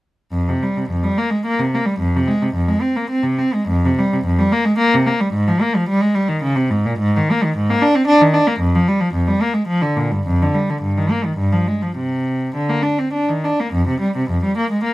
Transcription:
0.32 F2
0.49 C3
0.63 G3
0.77 C3
0.90 F2
1.03 G3
1.18 A#3
1.30 G#3
1.46 A#3
1.59 C3
1.74 A#3
1.86 G3
2.00 F2
2.16 C3
2.28 G#3
2.42 C3
2.55 F2
2.68 G#3
2.81 C4
2.96 A#3
3.10 C4
3.23 C3
3.38 C4
3.54 G#3
3.68 F2
3.85 C3
3.98 G3
4.13 C3
4.25 F2
4.38 G3
4.52 A#3
4.65 G#3
4.78 A#3
4.94 C3
5.06 A#3
5.20 G3
5.33 G#2
5.48 F3
5.61 A#3
5.76 F3
5.89 G3
6.01 G#3
6.15 G3
6.29 D#3
6.43 C#3
6.56 C3
6.70 G#2
6.85 A#2
6.99 G#2
7.16 D#3
7.31 A#3
7.44 D#3
7.57 G#2
7.70 A#3
7.82 D4
7.95 C4
8.07 D4
8.21 D#3
8.34 D4
8.47 A#3
8.60 F2
8.75 F3
8.88 G3
9.00 F3
9.14 F2
9.27 G3
9.42 A#3
9.53 G#3
9.68 F3
9.82 D3
9.97 A#2
10.11 G2
10.27 F2
10.42 D3
10.54 G3
10.70 D3
10.82 G2
10.97 D#3
11.11 A#3
11.25 D#3
11.37 G2
11.52 F3
11.67 G#3
11.82 F3
11.97 C3
12.55 D3
12.69 A#3
12.82 D4
12.99 C4
13.13 D4
13.29 D#3
13.44 D4
13.60 A#3
13.73 F2
13.88 C3
14.01 G3
14.17 C3
14.30 F2
14.44 G3
14.57 A#3
14.72 G#3
14.84 A#3

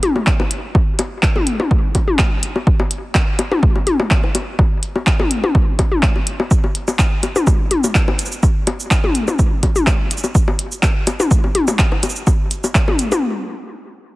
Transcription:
0.03 closed hi-hat, mid tom
0.16 low bongo
0.27 kick, clap
0.40 high bongo, low bongo
0.51 closed hi-hat
0.75 kick, low bongo
0.99 closed hi-hat, low bongo
1.23 kick, clap
1.36 mid tom, low bongo
1.47 closed hi-hat
1.60 mid tom, high bongo, low bongo
1.71 kick
1.95 kick, closed hi-hat, low bongo
2.08 mid tom
2.19 kick, clap, low bongo
2.43 closed hi-hat
2.56 low bongo
2.67 kick
2.80 low bongo
2.91 closed hi-hat
3.15 kick, clap, low bongo
3.39 closed hi-hat, low bongo
3.52 mid tom, high bongo
3.63 kick
3.76 low bongo
3.87 closed hi-hat, mid tom
4.00 low bongo
4.11 kick, clap
4.24 high bongo
4.35 closed hi-hat, low bongo
4.59 kick, low bongo
4.83 closed hi-hat
4.96 low bongo
5.07 kick, clap
5.20 mid tom, low bongo
5.31 closed hi-hat
5.44 mid tom, high bongo
5.55 kick, low bongo
5.79 kick, closed hi-hat, low bongo
5.92 mid tom
6.03 kick, clap
6.16 low bongo
6.27 closed hi-hat
6.40 low bongo
6.51 kick, cabasa
6.64 low bongo
6.75 closed hi-hat
6.88 low bongo, cabasa
6.99 kick, clap, cabasa
7.23 closed hi-hat, low bongo, cabasa
7.36 mid tom, high bongo, cabasa
7.47 kick, low bongo, cabasa
7.71 closed hi-hat, mid tom
7.84 low bongo, cabasa
7.95 kick, clap, cabasa
8.08 high bongo, low bongo
8.19 closed hi-hat, cabasa
8.25 cabasa
8.32 cabasa
8.43 kick, low bongo, cabasa
8.67 closed hi-hat, low bongo
8.80 cabasa
8.91 kick, clap, cabasa
9.04 mid tom, low bongo
9.15 closed hi-hat, cabasa
9.28 mid tom, high bongo, low bongo, cabasa
9.39 kick, cabasa
9.63 kick, closed hi-hat, low bongo
9.76 mid tom, cabasa
9.87 kick, clap, low bongo, cabasa
10.11 closed hi-hat, cabasa
10.17 cabasa
10.24 low bongo, cabasa
10.35 kick, cabasa
10.48 low bongo
10.59 closed hi-hat
10.72 cabasa
10.83 kick, clap, low bongo, cabasa
11.07 closed hi-hat, low bongo, cabasa
11.20 mid tom, high bongo, cabasa
11.31 kick, cabasa
11.44 low bongo
11.55 closed hi-hat, mid tom
11.68 low bongo, cabasa
11.79 kick, clap, cabasa
11.92 high bongo
12.03 closed hi-hat, low bongo, cabasa
12.09 cabasa
12.16 cabasa
12.27 kick, low bongo, cabasa
12.51 closed hi-hat, cabasa
12.64 low bongo, cabasa
12.75 kick, clap, cabasa
12.88 mid tom, low bongo
12.99 closed hi-hat, cabasa
13.12 mid tom, high bongo, cabasa

